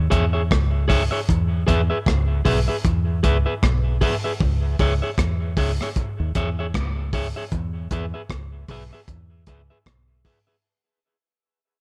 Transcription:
0.00 0.11 D#2 medium
0.10 0.48 E2 medium
0.10 0.24 G#4 medium
0.10 0.24 C#5 medium
0.10 0.25 E5 loud
0.10 kick medium
0.10 closed hi-hat medium
0.33 0.42 G#4 soft
0.33 0.41 C#5 medium
0.33 0.41 E5 medium
0.51 1.09 C#2 loud
0.51 kick loud
0.51 cross-stick loud
0.88 1.02 G#4 medium
0.88 1.02 C#5 loud
0.88 1.03 E5 loud
0.88 kick loud
0.88 open hi-hat medium
1.11 1.20 G#4 medium
1.11 1.19 C#5 medium
1.11 1.19 E5 medium
1.29 1.65 E2 loud
1.29 kick loud
1.29 hi-hat pedal medium
1.67 1.89 E2 loud
1.67 1.80 G#4 medium
1.67 1.81 B4 medium
1.67 1.81 E5 loud
1.67 kick medium
1.67 closed hi-hat medium
1.90 1.98 G#4 medium
1.90 1.98 B4 medium
1.90 1.97 E5 medium
2.06 2.43 C#2 medium
2.06 kick loud
2.06 cross-stick loud
2.45 2.67 B1 medium
2.45 2.58 G#4 medium
2.45 2.58 B4 medium
2.45 2.59 E5 loud
2.45 kick medium
2.45 open hi-hat medium
2.68 2.76 G#4 soft
2.68 2.76 B4 medium
2.68 2.75 E5 medium
2.85 3.21 E2 medium
2.85 kick loud
2.85 hi-hat pedal medium
3.23 3.45 C#2 medium
3.23 3.36 G#4 medium
3.23 3.37 B4 medium
3.23 3.37 E5 medium
3.23 kick loud
3.23 closed hi-hat medium
3.46 3.54 G#4 medium
3.46 3.53 B4 medium
3.46 3.53 E5 medium
3.63 3.99 B1 medium
3.63 kick loud
3.63 cross-stick loud
4.01 4.14 G#4 medium
4.01 4.15 B4 medium
4.01 4.15 E5 loud
4.01 kick loud
4.01 open hi-hat medium
4.24 4.32 G#4 medium
4.24 4.32 B4 medium
4.24 4.31 E5 medium
4.41 4.77 C#2 loud
4.41 kick loud
4.79 5.01 C#2 medium
4.79 4.92 G#4 medium
4.79 4.93 C#5 medium
4.79 4.93 E5 medium
4.79 kick medium
4.79 open hi-hat soft
5.02 5.10 G#4 soft
5.02 5.10 C#5 medium
5.02 5.09 E5 medium
5.18 5.54 E2 medium
5.18 kick loud
5.18 cross-stick loud
5.18 hi-hat pedal medium
5.57 5.78 C#2 medium
5.57 5.70 G#4 medium
5.57 5.71 C#5 medium
5.57 5.71 E5 medium
5.57 kick medium
5.57 open hi-hat medium
5.81 5.89 G#4 medium
5.81 5.88 C#5 medium
5.81 5.88 E5 medium
5.81 cross-stick medium
5.96 kick loud
5.96 hi-hat pedal medium
6.20 6.34 D#2 medium
6.35 6.72 E2 medium
6.35 6.48 G#4 medium
6.35 6.49 C#5 medium
6.35 6.49 E5 medium
6.35 kick loud
6.35 closed hi-hat medium
6.59 6.66 G#4 soft
6.59 6.66 C#5 medium
6.59 6.66 E5 medium
6.74 7.32 C#2 medium
6.74 kick loud
6.74 cross-stick loud
7.13 7.26 G#4 medium
7.13 7.27 C#5 medium
7.13 7.27 E5 medium
7.13 kick medium
7.13 open hi-hat medium
7.36 7.44 G#4 medium
7.36 7.44 C#5 medium
7.36 7.43 E5 medium
7.51 7.89 E2 loud
7.51 kick loud
7.51 hi-hat pedal medium
7.91 8.13 E2 loud
7.91 8.04 G#4 medium
7.91 8.05 B4 medium
7.91 8.05 E5 medium
7.91 kick medium
7.91 closed hi-hat medium
8.14 8.22 G#4 soft
8.14 8.21 B4 medium
8.14 8.21 E5 medium
8.30 8.66 C#2 medium
8.30 kick loud
8.30 cross-stick loud
8.68 8.90 B1 medium
8.68 8.82 G#4 medium
8.68 8.83 B4 medium
8.68 8.83 E5 medium
8.68 kick medium
8.68 open hi-hat medium
8.93 9.00 G#4 medium
8.93 9.00 B4 medium
8.93 8.99 E5 medium
9.08 9.44 E2 medium
9.08 kick loud
9.08 hi-hat pedal medium
9.47 9.69 C#2 medium
9.47 9.60 G#4 medium
9.47 9.61 B4 medium
9.47 9.61 E5 medium
9.47 kick medium
9.47 closed hi-hat medium
9.70 9.78 G#4 soft
9.70 9.77 B4 soft
9.70 9.77 E5 medium
9.86 10.23 B1 medium
9.86 kick loud
9.86 cross-stick loud
10.25 10.38 G#4 medium
10.25 10.38 B4 medium
10.25 10.38 E5 medium
10.25 kick medium
10.25 open hi-hat medium
10.47 10.55 G#4 medium
10.47 10.55 B4 medium
10.47 10.55 E5 medium

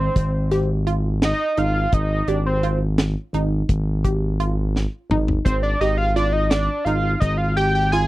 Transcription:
0.00 0.70 C5 medium
0.16 1.33 G#1 loud
0.16 kick loud
0.16 closed hi-hat medium
0.51 0.81 G4 medium
0.51 snare soft
0.51 closed hi-hat medium
0.87 1.45 F4 medium
0.87 closed hi-hat medium
1.22 1.60 D#5 loud
1.22 snare loud
1.22 closed hi-hat medium
1.57 1.87 G#1 medium
1.57 1.87 D#4 medium
1.57 1.95 F5 loud
1.57 closed hi-hat medium
1.93 2.22 G#1 loud
1.93 2.29 D#5 loud
1.93 kick loud
1.93 closed hi-hat medium
2.28 3.15 G#1 medium
2.28 2.57 G4 medium
2.28 2.46 D5 medium
2.28 closed hi-hat medium
2.46 2.79 C5 medium
2.63 3.22 F4 medium
2.63 closed hi-hat medium
2.98 snare loud
2.98 closed hi-hat medium
3.33 3.63 G#1 medium
3.33 3.63 D#4 medium
3.33 closed hi-hat medium
3.69 4.86 G#1 loud
3.69 kick loud
3.69 closed hi-hat medium
4.04 4.34 G4 medium
4.04 kick medium
4.04 closed hi-hat medium
4.40 4.98 F4 medium
4.40 closed hi-hat medium
4.76 snare medium
5.10 5.39 G#1 medium
5.10 5.40 D#4 medium
5.10 mid tom medium
5.28 floor tom medium
5.45 5.75 G#1 loud
5.45 5.62 C5 medium
5.45 kick loud
5.45 closed hi-hat medium
5.63 5.80 D5 medium
5.81 6.68 G#1 medium
5.81 6.10 G4 medium
5.81 5.97 D#5 medium
5.81 snare soft
5.81 closed hi-hat medium
5.98 6.15 F5 medium
6.16 6.75 F4 medium
6.16 6.28 D5 loud
6.16 closed hi-hat medium
6.28 6.34 D5 medium
6.33 6.49 D#5 medium
6.50 6.86 D5 medium
6.50 snare loud
6.50 closed hi-hat medium
6.85 7.15 G#1 medium
6.85 7.16 D#4 medium
6.85 7.20 F5 medium
6.85 closed hi-hat medium
7.20 8.07 G#1 loud
7.20 7.39 D#5 loud
7.20 kick loud
7.20 closed hi-hat medium
7.37 7.56 F5 medium
7.57 7.87 G4 medium
7.57 7.74 G5 loud
7.57 closed hi-hat medium
7.75 7.91 G5 medium
7.92 8.07 F4 medium
7.92 8.07 G#5 loud
7.92 closed hi-hat medium

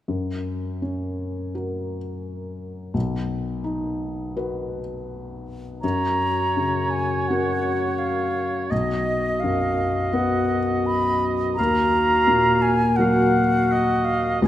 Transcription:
0.08 2.90 F#2 soft
0.82 1.96 C#4 soft
1.55 2.91 F#4 soft
1.55 2.91 A#4 soft
2.94 5.78 B1 soft
3.64 4.78 D#4 soft
4.37 5.79 F#4 soft
4.37 5.79 B4 soft
5.81 8.67 F#2 soft
5.81 11.55 F#4 soft
5.81 8.72 C#5 soft
5.81 6.92 A#5 medium
6.56 7.72 C#3 soft
6.90 7.29 G#5 soft
7.28 8.68 C#4 soft
7.28 8.68 F#4 soft
7.28 8.68 A#4 soft
7.28 8.00 F#5 soft
7.98 8.68 F5 soft
8.69 11.54 B1 soft
8.69 9.41 D#5 medium
8.69 11.58 D#5 soft
9.40 10.58 F#2 soft
9.40 10.15 F5 medium
10.13 11.54 B3 soft
10.13 11.54 F#4 soft
10.13 11.54 B4 soft
10.13 10.88 F#5 medium
10.86 11.25 B5 medium
11.55 12.80 F#4 medium
11.55 12.83 F5 medium
11.55 12.63 A#5 medium
11.59 14.41 D#2 soft
12.27 13.41 A#2 soft
12.62 12.98 G#5 medium
12.96 14.40 F#3 soft
12.96 14.40 F#4 medium
12.96 14.41 F#4 soft
12.96 14.41 A#4 soft
12.96 14.06 F#5 medium
13.00 13.73 F5 soft
13.72 14.45 D#5 soft
14.05 14.43 F5 medium
14.42 14.48 C#2 soft
14.42 14.48 F#4 soft
14.42 14.48 G#5 medium

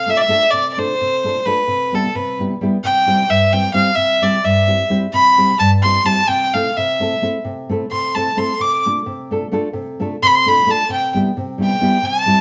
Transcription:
0.00 0.19 C3 medium
0.00 0.11 F5 medium
0.06 0.22 A3 medium
0.06 0.22 D4 soft
0.06 0.22 F4 soft
0.06 0.23 A4 medium
0.06 0.19 E5 loud
0.17 0.22 D5 medium
0.17 0.52 E5 loud
0.28 0.44 A3 medium
0.28 0.44 D4 medium
0.28 0.44 F4 medium
0.28 0.45 A4 medium
0.50 0.89 C3 medium
0.50 0.69 D5 medium
0.73 0.92 A3 medium
0.73 0.80 D5 medium
0.78 0.92 D4 medium
0.78 0.93 F4 medium
0.78 0.93 A4 medium
0.78 1.47 C5 loud
1.01 1.35 C3 medium
1.24 1.38 A3 medium
1.24 1.38 D4 medium
1.24 1.39 F4 soft
1.24 1.39 A4 medium
1.46 1.60 A3 medium
1.46 1.60 D4 medium
1.46 1.61 F4 medium
1.46 1.61 A4 medium
1.46 1.96 B4 medium
1.67 2.04 C3 medium
1.92 2.08 G3 medium
1.92 2.07 B3 medium
1.92 2.08 E4 medium
1.92 2.08 G4 medium
1.92 2.17 A4 medium
2.15 2.50 C3 medium
2.15 2.39 B4 medium
2.39 2.53 G3 medium
2.39 2.54 B3 medium
2.39 2.54 E4 soft
2.39 2.54 G4 medium
2.61 2.75 G3 medium
2.61 2.76 B3 medium
2.61 2.76 E4 medium
2.61 2.76 G4 medium
2.84 3.20 C3 medium
2.84 3.32 G5 loud
3.06 3.22 G3 medium
3.06 3.22 C4 medium
3.06 3.23 E4 medium
3.06 3.23 G4 medium
3.29 3.64 G2 medium
3.29 3.54 E5 medium
3.52 3.68 G3 medium
3.52 3.68 C4 medium
3.52 3.68 E4 soft
3.52 3.69 G4 medium
3.52 3.73 G5 loud
3.74 3.89 G3 medium
3.74 3.90 C4 medium
3.74 3.90 E4 medium
3.74 3.90 G4 medium
3.74 3.96 F5 medium
3.95 4.34 C3 medium
3.95 4.24 E5 medium
4.21 4.37 G3 medium
4.21 4.38 C4 medium
4.21 4.38 E4 medium
4.21 4.38 G4 medium
4.21 4.46 D5 medium
4.44 4.80 G2 medium
4.44 4.91 E5 medium
4.67 4.83 G3 soft
4.67 4.83 C4 soft
4.67 4.83 E4 medium
4.67 4.84 G4 medium
4.89 5.05 G3 medium
4.89 5.05 C4 medium
4.89 5.05 E4 medium
4.89 5.06 G4 medium
5.13 5.50 C3 medium
5.13 5.58 B5 loud
5.37 5.53 G3 medium
5.37 5.53 C4 medium
5.37 5.53 E4 medium
5.37 5.54 G4 medium
5.59 5.95 G2 medium
5.59 5.70 A5 medium
5.83 5.99 G3 medium
5.83 5.99 C4 soft
5.83 5.99 E4 soft
5.83 6.00 G4 medium
5.83 6.07 C6 loud
6.04 6.20 G3 medium
6.04 6.20 C4 medium
6.04 6.21 E4 medium
6.04 6.21 G4 medium
6.04 6.30 A5 loud
6.28 6.65 C3 medium
6.28 6.55 G5 loud
6.53 6.69 A3 medium
6.53 6.69 C4 medium
6.53 6.70 E4 medium
6.53 6.70 A4 medium
6.53 6.78 F5 medium
6.76 7.12 C3 medium
6.76 7.22 E5 medium
7.00 7.15 A3 medium
7.00 7.15 C4 soft
7.00 7.15 E4 medium
7.00 7.16 A4 medium
7.22 7.37 A3 medium
7.22 7.37 C4 medium
7.22 7.37 E4 medium
7.22 7.37 A4 medium
7.45 7.81 C3 medium
7.69 7.84 A3 medium
7.69 7.84 C4 medium
7.69 7.85 E4 medium
7.69 7.85 A4 medium
7.92 8.26 C3 medium
7.92 8.16 C6 medium
8.15 8.30 A3 medium
8.15 8.30 C4 soft
8.15 8.31 E4 soft
8.15 8.31 A4 medium
8.15 8.39 A5 medium
8.37 8.52 A3 medium
8.37 8.52 C4 medium
8.37 8.52 E4 medium
8.37 8.52 A4 medium
8.37 8.62 C6 medium
8.60 8.96 C3 medium
8.60 8.86 D6 medium
8.86 9.00 A3 medium
8.86 9.01 D4 soft
8.86 9.01 F4 medium
8.86 9.01 A4 medium
9.06 9.41 C3 medium
9.31 9.45 A3 medium
9.31 9.46 D4 medium
9.31 9.46 F4 medium
9.31 9.46 A4 medium
9.52 9.67 A3 medium
9.52 9.67 D4 medium
9.52 9.67 F4 medium
9.52 9.67 A4 medium
9.73 10.10 C3 medium
10.00 10.15 A3 medium
10.00 10.15 D4 medium
10.00 10.15 F4 medium
10.00 10.16 A4 medium
10.22 10.57 C3 medium
10.22 10.28 C6 loud
10.27 10.36 B5 medium
10.35 10.49 C6 loud
10.46 10.60 A3 medium
10.46 10.61 D4 medium
10.46 10.61 F4 soft
10.46 10.61 A4 medium
10.46 10.72 B5 medium
10.66 10.81 A3 medium
10.66 10.82 D4 medium
10.66 10.82 F4 medium
10.66 10.83 A4 medium
10.70 10.91 A5 loud
10.89 11.26 C3 medium
10.89 11.15 G5 medium
11.14 11.29 G3 medium
11.14 11.30 B3 medium
11.14 11.30 E4 medium
11.14 11.30 G4 medium
11.37 11.72 C3 medium
11.58 11.74 G3 medium
11.58 11.75 B3 medium
11.58 11.75 E4 medium
11.58 11.75 G4 medium
11.64 12.07 G5 medium
11.81 11.96 G3 medium
11.81 11.96 B3 medium
11.81 11.97 E4 medium
11.81 11.97 G4 medium
12.02 12.40 C3 medium
12.02 12.41 A5 loud
12.26 12.41 G3 medium
12.26 12.41 C4 medium
12.26 12.41 E4 medium
12.26 12.41 G4 medium

